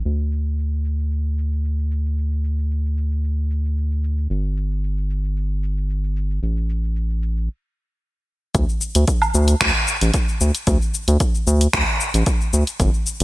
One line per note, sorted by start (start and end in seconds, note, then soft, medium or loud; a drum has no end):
0.05 4.28 D2 medium
0.05 shaker soft
0.19 shaker soft
0.32 shaker medium
0.46 shaker soft
0.58 shaker soft
0.72 shaker soft
0.85 shaker medium
0.99 shaker soft
1.11 shaker soft
1.38 shaker medium
1.52 shaker soft
1.65 shaker soft
1.79 shaker soft
1.91 shaker medium
2.06 shaker soft
2.18 shaker soft
2.32 shaker soft
2.44 shaker medium
2.59 shaker soft
2.71 shaker soft
2.85 shaker soft
2.97 shaker medium
3.11 shaker soft
3.24 shaker soft
3.51 shaker medium
3.65 shaker soft
3.77 shaker soft
3.91 shaker soft
4.04 shaker medium
4.18 shaker soft
4.30 6.40 G1 medium
4.30 shaker soft
4.45 shaker soft
4.57 shaker medium
4.71 shaker soft
4.84 shaker soft
4.98 shaker soft
5.10 shaker medium
5.24 shaker soft
5.37 shaker soft
5.63 shaker medium
5.77 shaker soft
5.90 shaker soft
6.04 shaker soft
6.16 shaker medium
6.31 shaker soft
6.43 7.49 A1 medium
6.43 shaker soft
6.57 shaker soft
6.69 shaker medium
6.84 shaker soft
6.96 shaker soft
7.10 shaker soft
7.22 shaker medium
7.37 shaker soft
8.55 8.66 D2 medium
8.55 kick loud
8.55 closed hi-hat soft
8.55 shaker soft
8.69 shaker soft
8.81 shaker medium
8.95 9.05 D2 loud
8.95 closed hi-hat medium
8.95 shaker soft
9.08 kick loud
9.08 closed hi-hat soft
9.08 shaker soft
9.22 low woodblock medium
9.22 shaker soft
9.34 9.55 D2 loud
9.34 shaker medium
9.48 closed hi-hat medium
9.48 shaker soft
9.61 9.72 D2 medium
9.61 finger snap medium
9.61 kick loud
9.61 closed hi-hat soft
9.61 shaker soft
9.88 shaker medium
10.01 10.11 A1 medium
10.01 closed hi-hat medium
10.01 shaker soft
10.14 kick loud
10.14 closed hi-hat soft
10.14 shaker soft
10.28 shaker soft
10.41 10.52 D2 loud
10.41 shaker medium
10.55 closed hi-hat medium
10.55 shaker soft
10.67 10.78 D2 loud
10.67 kick loud
10.67 closed hi-hat soft
10.67 shaker soft
10.82 shaker soft
10.94 shaker medium
11.08 11.17 D2 loud
11.08 closed hi-hat medium
11.08 shaker soft
11.20 kick loud
11.20 closed hi-hat soft
11.20 shaker soft
11.35 shaker soft
11.47 11.68 D2 loud
11.47 shaker medium
11.61 closed hi-hat medium
11.61 shaker soft
11.73 11.84 D2 medium
11.73 finger snap medium
11.73 kick loud
11.73 closed hi-hat soft
11.73 shaker soft
12.00 shaker medium
12.14 12.24 A1 medium
12.14 closed hi-hat medium
12.14 shaker soft
12.26 kick loud
12.26 closed hi-hat soft
12.26 shaker soft
12.41 shaker soft
12.53 12.64 D2 loud
12.53 shaker medium
12.67 closed hi-hat medium
12.67 shaker soft
12.80 12.90 G1 loud
12.80 kick loud
12.80 closed hi-hat soft
12.80 shaker soft
12.94 shaker soft
13.07 shaker medium
13.20 closed hi-hat medium